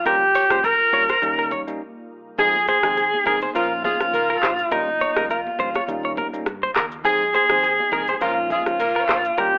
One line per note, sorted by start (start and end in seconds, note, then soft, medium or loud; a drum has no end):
0.00 2.35 C#3 medium
0.00 1.20 A#3 medium
0.00 1.20 F4 medium
0.05 0.38 G1 loud
0.05 0.22 G3 loud
0.05 2.37 G3 medium
0.05 0.22 A#3 medium
0.05 0.22 C#4 medium
0.05 0.22 F4 loud
0.05 0.66 G4 loud
0.05 0.15 A#4 medium
0.05 kick loud
0.05 shaker medium
0.35 0.44 C#5 medium
0.35 open hi-hat medium
0.35 shaker medium
0.50 0.81 F1 loud
0.50 0.64 G3 medium
0.50 0.65 A#3 medium
0.50 0.65 C#4 medium
0.50 0.65 F4 medium
0.50 0.59 C5 medium
0.50 cross-stick loud
0.50 shaker medium
0.64 0.73 A#4 medium
0.64 1.52 A#4 loud
0.64 kick loud
0.64 shaker medium
0.92 1.14 G1 loud
0.92 1.09 G3 medium
0.92 1.09 A#3 medium
0.92 1.10 C#4 medium
0.92 1.10 F4 medium
0.92 1.02 C#5 medium
0.92 kick loud
0.92 shaker medium
1.09 1.17 C5 medium
1.09 cross-stick medium
1.09 shaker medium
1.22 1.54 D#2 loud
1.22 1.63 G3 loud
1.22 1.63 A#3 medium
1.22 1.64 C#4 medium
1.22 3.53 D#4 medium
1.22 1.64 D#4 loud
1.22 shaker medium
1.39 1.46 A#4 medium
1.51 1.61 C#5 medium
1.51 kick medium
1.51 shaker soft
1.67 1.80 G3 medium
1.67 1.80 A#3 medium
1.67 1.81 C#4 medium
1.67 1.81 D#4 medium
1.67 shaker medium
2.38 2.71 F2 loud
2.38 2.55 F3 medium
2.38 4.69 F3 medium
2.38 2.55 G#3 medium
2.38 2.62 G#3 loud
2.38 2.55 C4 medium
2.38 2.55 D#4 loud
2.38 2.62 G#4 loud
2.38 2.48 G#4 medium
2.38 2.66 G#4 loud
2.38 kick loud
2.38 low conga medium
2.38 shaker medium
2.55 high conga medium
2.68 3.22 G#4 loud
2.68 2.77 C5 medium
2.68 high conga medium
2.68 shaker medium
2.83 3.14 D#2 medium
2.83 2.97 F3 medium
2.83 2.98 G#3 medium
2.83 3.07 C4 medium
2.83 2.98 C4 medium
2.83 2.98 D#4 medium
2.83 2.92 G#4 medium
2.83 3.07 C5 medium
2.83 cross-stick loud
2.83 shaker medium
2.97 3.06 G#4 medium
2.97 shaker medium
3.14 high conga medium
3.26 3.47 C2 medium
3.26 3.42 F3 medium
3.26 3.49 G#3 medium
3.26 3.43 G#3 medium
3.26 3.43 C4 medium
3.26 3.43 D#4 medium
3.26 3.49 G#4 medium
3.26 3.40 G#4 loud
3.26 3.35 A#4 medium
3.26 kick loud
3.26 low conga medium
3.26 shaker medium
3.41 3.50 C5 medium
3.41 high conga medium
3.41 shaker medium
3.55 3.87 A#1 loud
3.55 3.96 F3 loud
3.55 3.68 F3 medium
3.55 3.96 A#3 medium
3.55 3.97 C#4 medium
3.55 3.68 F4 loud
3.55 3.82 F4 loud
3.55 3.97 F4 loud
3.55 5.86 F4 medium
3.55 3.72 A#4 medium
3.55 shaker medium
3.84 3.97 G#3 medium
3.84 4.73 F4 loud
3.84 3.97 G#4 loud
3.84 kick medium
3.84 high conga medium
3.84 shaker medium
4.00 4.14 F3 medium
4.00 4.14 A#3 medium
4.00 4.14 C#4 medium
4.00 4.14 F4 medium
4.00 cross-stick loud
4.00 shaker medium
4.13 4.34 C#2 medium
4.13 4.56 A#3 medium
4.13 4.56 A#4 loud
4.13 shaker medium
4.30 4.37 A#4 medium
4.42 4.63 A#1 medium
4.42 4.52 C5 medium
4.42 cross-stick loud
4.42 clap loud
4.42 high conga medium
4.42 low conga medium
4.42 shaker medium
4.58 shaker medium
4.71 5.04 G1 loud
4.71 7.03 C#3 medium
4.71 4.88 G3 medium
4.71 4.88 A#3 medium
4.71 4.88 C#4 medium
4.71 5.30 D#4 loud
4.71 4.88 F4 loud
4.71 4.81 A#4 medium
4.71 kick loud
4.71 low conga medium
4.71 shaker medium
4.88 high conga medium
5.01 5.10 C#5 medium
5.01 high conga medium
5.01 shaker medium
5.16 5.47 F1 loud
5.16 5.30 G3 medium
5.16 5.31 A#3 medium
5.16 5.31 C#4 medium
5.16 5.31 F4 medium
5.16 5.25 A#4 medium
5.16 cross-stick loud
5.16 shaker medium
5.30 6.13 F4 medium
5.30 5.39 A#4 medium
5.30 shaker medium
5.47 high conga medium
5.59 5.80 G1 loud
5.59 5.75 G3 medium
5.59 5.76 A#3 medium
5.59 5.76 C#4 medium
5.59 5.76 F4 medium
5.59 5.69 C5 medium
5.59 kick loud
5.59 low conga medium
5.59 shaker medium
5.75 5.83 C#5 medium
5.75 cross-stick loud
5.75 high conga medium
5.75 shaker medium
5.88 6.20 D#2 loud
5.88 6.29 G3 loud
5.88 6.30 A#3 medium
5.88 6.30 C#4 medium
5.88 8.19 D#4 medium
5.88 6.30 D#4 loud
5.88 shaker medium
6.05 6.12 C#5 medium
6.17 6.27 A#4 medium
6.17 kick medium
6.17 high conga medium
6.17 shaker soft
6.33 6.47 G3 medium
6.33 6.47 A#3 medium
6.33 6.47 C#4 medium
6.33 6.47 D#4 medium
6.33 shaker medium
6.46 6.67 G2 loud
6.46 cross-stick loud
6.46 shaker medium
6.63 6.70 C5 medium
6.75 7.05 D#2 loud
6.75 6.85 A#4 medium
6.75 cross-stick loud
6.75 clap loud
6.75 high conga medium
6.75 low conga medium
6.75 shaker soft
6.92 shaker medium
7.04 7.37 F2 loud
7.04 7.21 F3 loud
7.04 9.35 F3 medium
7.04 7.21 G#3 medium
7.04 7.28 G#3 loud
7.04 7.21 C4 medium
7.04 7.21 D#4 loud
7.04 7.28 G#4 loud
7.04 7.14 G#4 medium
7.04 7.32 G#4 loud
7.04 kick loud
7.04 low conga medium
7.04 shaker medium
7.21 high conga medium
7.34 8.12 G#4 loud
7.34 7.43 C5 medium
7.34 high conga medium
7.34 shaker medium
7.50 7.80 D#2 medium
7.50 7.64 F3 medium
7.50 7.64 G#3 medium
7.50 7.73 C4 medium
7.50 7.64 C4 medium
7.50 7.64 D#4 medium
7.50 7.58 G#4 medium
7.50 7.73 C5 medium
7.50 cross-stick loud
7.50 shaker medium
7.63 7.72 G#4 medium
7.63 shaker medium
7.80 high conga medium
7.92 8.13 C2 loud
7.92 8.08 F3 medium
7.92 8.15 G#3 medium
7.92 8.09 G#3 medium
7.92 8.09 C4 medium
7.92 8.09 D#4 medium
7.92 8.15 G#4 medium
7.92 8.02 A#4 medium
7.92 kick medium
7.92 low conga medium
7.92 shaker medium
8.07 8.16 C5 medium
8.07 high conga medium
8.07 shaker medium
8.16 8.24 G#4 medium
8.21 8.53 A#1 loud
8.21 9.58 C#3 medium
8.21 8.62 F3 loud
8.21 8.34 F3 medium
8.21 8.62 A#3 medium
8.21 9.58 A#3 medium
8.21 8.62 C#4 loud
8.21 8.34 F4 loud
8.21 8.63 F4 loud
8.21 9.58 F4 medium
8.21 8.51 F4 loud
8.21 8.38 A#4 medium
8.21 shaker medium
8.50 8.63 G#3 medium
8.50 9.41 F4 loud
8.50 8.63 G#4 medium
8.50 kick medium
8.50 high conga medium
8.50 shaker soft
8.66 8.80 F3 medium
8.66 8.80 A#3 medium
8.66 8.80 C#4 medium
8.66 8.80 F4 medium
8.66 cross-stick medium
8.66 shaker medium
8.79 9.00 C#2 medium
8.79 9.22 A#3 medium
8.79 9.22 A#4 loud
8.79 shaker medium
8.96 9.03 A#4 medium
9.09 9.29 A#1 medium
9.09 9.18 C5 medium
9.09 cross-stick loud
9.09 clap loud
9.09 high conga medium
9.09 low conga medium
9.09 shaker soft
9.25 shaker medium
9.38 9.58 G1 loud
9.38 9.54 G3 loud
9.38 9.54 A#3 medium
9.38 9.54 C#4 medium
9.38 9.54 F4 loud
9.38 9.58 G4 loud
9.38 9.47 A#4 medium
9.38 kick loud
9.38 low conga medium
9.38 shaker medium
9.54 high conga medium